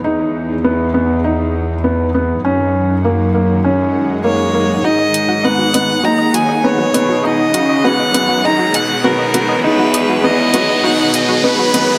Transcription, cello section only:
\new Staff \with { instrumentName = "Cello section" } { \clef bass \time 4/4 \key gis \minor \tempo 4 = 100 e,1 | fis,1 | gis,2 dis,4. b,8~ | b,8 cis4 fis,4 b,4. |
e,2 b,4. fis,8 | }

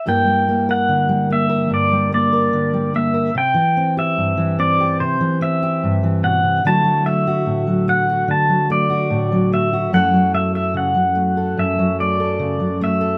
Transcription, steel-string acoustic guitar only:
\new Staff \with { instrumentName = "Steel-string acoustic guitar" } { \time 4/4 \key g \lydian \tempo 4 = 73 << { <g bes e' bes'>8 bes16 bes'8. bes16 bes'8. bes16 bes'8. bes16 bes'16 | r8 c'16 g'8. c'16 g'8. c'16 g'4~ g'16 | <fis a e' fis'>8 a16 fis'8. a16 fis'8. a16 fis'8. a16 fis'16 | <fis a e' a'>8 a16 a'8. a16 a'8. a16 a'8. a16 a'16 | } \\ { g,16 g8. d16 g8. g,16 g8. d16 g8. | c16 e8. g,16 e8. c16 e8. g,16 e16 b,16 c16 | d16 fis8. a,16 fis8. d16 fis8. a,16 fis8. | fis,16 fis8. cis16 fis8. fis,16 fis8. cis16 fis8. | } >> }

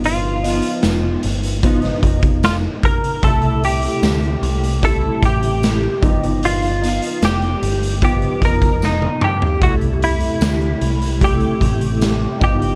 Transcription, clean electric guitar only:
\new Staff \with { instrumentName = "Clean electric guitar" } { \time 4/4 \key c \lydian \tempo 4 = 75 f'4. r4. f'8 bes'8 | a'8 g'4. a'8 g'4. | f'4 g'4 g'8 bes'8 dis'8 g'8 | fis'8 e'4. g'4. g'8 | }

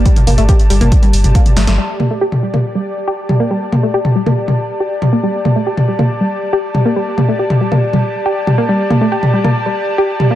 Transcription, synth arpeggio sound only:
\new Staff \with { instrumentName = "Synth arpeggio sound" } { \time 4/4 \key c \dorian \tempo 4 = 139 g16 r16 bes16 a16 g'16 r16 g16 bes16 r16 g16 r8 bes16 r16 a16 a16 | g16 r16 bes16 a16 g'16 r16 g16 bes16 r16 g16 r8 g'16 r16 g16 bes16 | g16 r16 bes16 a16 g'16 r16 g16 bes16 r16 g16 r8 g'16 r16 g16 bes16 | g16 r16 bes16 a16 g'16 r16 g16 bes16 r16 g16 r8 g'16 r16 g16 bes16 |
g16 r16 bes16 a16 g'16 r16 g16 bes16 r16 g16 r8 g'16 r16 g16 bes16 | g16 r16 bes16 a16 g'16 r16 g16 bes16 r16 g16 r8 g'16 r16 g16 bes16 | }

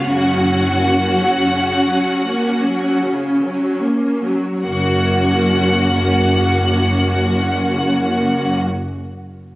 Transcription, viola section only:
\new Staff \with { instrumentName = "Viola section" } { \clef bass \time 3/4 \key fis \major \tempo 4 = 37 << { cis'2. | cis'2. | } \\ { cis16 fis16 ais16 fis16 cis16 fis16 ais16 fis16 cis16 fis16 ais16 fis16 | ais2. | } >> }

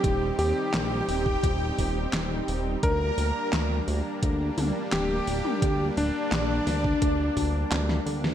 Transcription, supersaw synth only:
\new Staff \with { instrumentName = "Supersaw synth" } { \time 4/4 \key g \phrygian \tempo 4 = 86 <ees g c' ees' g'>1 | <g bes d'>1~ | <g bes d'>1 | }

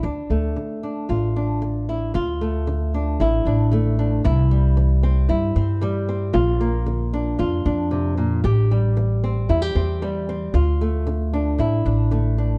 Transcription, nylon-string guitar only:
\new Staff \with { instrumentName = "Nylon-string guitar" } { \time 4/4 \key d \minor \tempo 4 = 114 << { d'8 a4 d'8 f'8 d'4 e'8 | f'8 a4 d'8 e'8 d'8 a8 d'8 | e'8 g4 c'8 e'8 c'8 g8 c'8 | f'8 bes4 d'8 f'8 d'4. |
g'8 g4 c'8 e'16 g'16 c'8 g8 c'8 | f'8 a4 d'8 e'8 d'8 a8 d'8 | } \\ { d,4 d4 a,4 d4 | d,4 d4 a,4 d4 | c4 e4 c4 e4 | bes,4 d4 f,4 c8 bes,8 |
a,4 e4 e,4 e4 | d,4 d4 a,4 d4 | } >> }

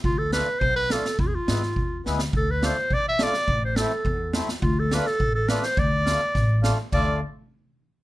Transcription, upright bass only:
\new Staff \with { instrumentName = "Upright bass" } { \clef bass \time 2/4 \tempo 4 = 105 d,4 b,,4 | e,8 gis,8 e,8 d,8 | d,4 b,,4 | a,,4 e,4 |
d,4 a,,4 | d,4 a,,4 | d,8 r4. | }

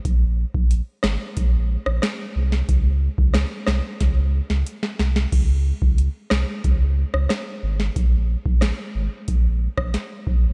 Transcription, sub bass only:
\new Staff \with { instrumentName = "Sub bass" } { \clef bass \time 4/4 \key des \lydian \tempo 4 = 91 bes,,8. bes,,8 r16 aes,,16 r16 bes,,8. bes,,16 r8 c,8 | des,8. des,8 r16 c,16 r16 des,8. des,16 r8 c,8 | des,8. des,8 r16 c,16 r16 des,8. des,16 r8 aes,,8 | bes,,8. bes,,8 r16 aes,,16 r16 bes,,8. bes,,16 r8 bes,,8 | }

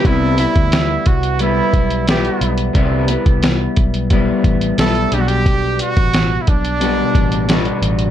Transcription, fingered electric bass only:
\new Staff \with { instrumentName = "Fingered electric bass" } { \clef bass \time 4/4 \key c \lydian \tempo 4 = 89 c,8. d,8. c,4 b,,4 b,,8 | c,8. c,8. b,,4 a,,8 b,,8 b,,8~ | b,,8. a,,8. b,,4 a,,4 a,,8 | }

